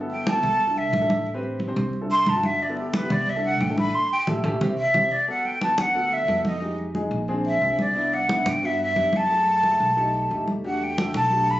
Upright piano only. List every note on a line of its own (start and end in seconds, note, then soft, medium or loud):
0.00 0.24 B3 medium
0.00 0.24 E4 medium
0.00 0.24 A4 medium
0.34 0.58 B3 medium
0.34 0.58 E4 medium
0.34 0.58 A4 medium
0.67 0.91 D4 medium
0.67 0.91 E4 medium
0.67 0.91 A4 medium
1.00 1.24 D4 medium
1.00 1.25 E4 medium
1.00 1.25 A4 medium
1.34 1.58 C4 loud
1.34 1.58 G4 medium
1.34 1.58 B4 loud
1.68 1.91 C4 loud
1.68 1.91 G4 medium
1.68 1.92 C5 loud
2.01 2.25 D4 medium
2.01 2.25 E4 medium
2.01 2.25 A4 medium
2.34 2.58 D4 medium
2.34 2.58 E4 medium
2.34 2.58 F#4 medium
2.68 2.92 B3 medium
2.68 2.92 E4 medium
2.68 2.92 A4 medium
3.02 3.26 B3 medium
3.02 3.26 E4 medium
3.02 3.26 G4 medium
3.36 3.59 D4 medium
3.36 3.59 E4 medium
3.36 3.59 A4 medium
3.70 3.93 D4 medium
3.70 3.93 E4 medium
3.70 3.93 A4 medium
4.28 4.38 E4 medium
4.28 4.38 G4 medium
4.28 4.38 A4 medium
4.45 4.55 E4 medium
4.45 4.55 G4 loud
4.45 4.55 A4 medium
4.61 4.72 C4 loud
4.61 4.72 E4 loud
4.61 4.72 G4 loud
4.95 5.05 C4 loud
4.95 5.05 E4 loud
4.95 5.05 G4 medium
5.27 5.51 B3 medium
5.27 5.51 F#4 medium
5.27 5.51 A4 medium
5.61 5.84 B3 medium
5.61 5.85 F#4 medium
5.61 5.85 B4 medium
5.95 6.18 B3 medium
5.95 6.18 F#4 medium
5.95 6.18 A4 medium
6.28 6.52 B3 medium
6.28 6.52 F#4 medium
6.28 6.52 A4 medium
6.61 6.85 G#3 medium
6.61 6.85 D#4 medium
6.61 6.85 G4 medium
6.95 7.18 G#3 medium
6.95 7.18 D#4 medium
6.95 7.19 G#4 medium
7.28 7.52 C4 loud
7.28 7.52 D4 medium
7.28 7.52 G#4 loud
7.62 7.86 C4 medium
7.62 7.85 D4 medium
7.62 7.86 G#4 medium
7.95 8.18 B3 medium
7.95 8.19 D4 medium
7.95 8.19 E4 medium
8.28 8.52 B3 medium
8.28 8.52 D4 medium
8.28 8.53 E4 medium
8.62 8.86 B3 medium
8.62 8.86 D4 medium
8.62 8.86 F#4 medium
8.95 9.19 B3 medium
8.95 9.19 D4 medium
8.95 9.19 G4 medium
9.29 9.53 A3 medium
9.29 9.53 E4 medium
9.29 9.53 G#4 medium
9.63 9.86 A3 medium
9.63 9.86 E4 medium
9.63 9.87 G#4 medium
9.96 10.20 A3 medium
9.96 10.20 D#4 medium
9.96 10.20 G4 medium
10.30 10.53 A3 medium
10.30 10.54 D#4 medium
10.30 10.54 G4 medium
10.64 10.87 A3 medium
10.64 10.87 D4 medium
10.64 10.87 F#4 medium
10.64 10.88 G4 medium
10.98 11.21 A3 medium
10.98 11.21 D4 medium
10.98 11.21 F#4 medium
10.98 11.21 A4 medium
11.31 11.54 A3 medium
11.31 11.54 D4 medium
11.31 11.54 F#4 medium
11.31 11.54 G4 medium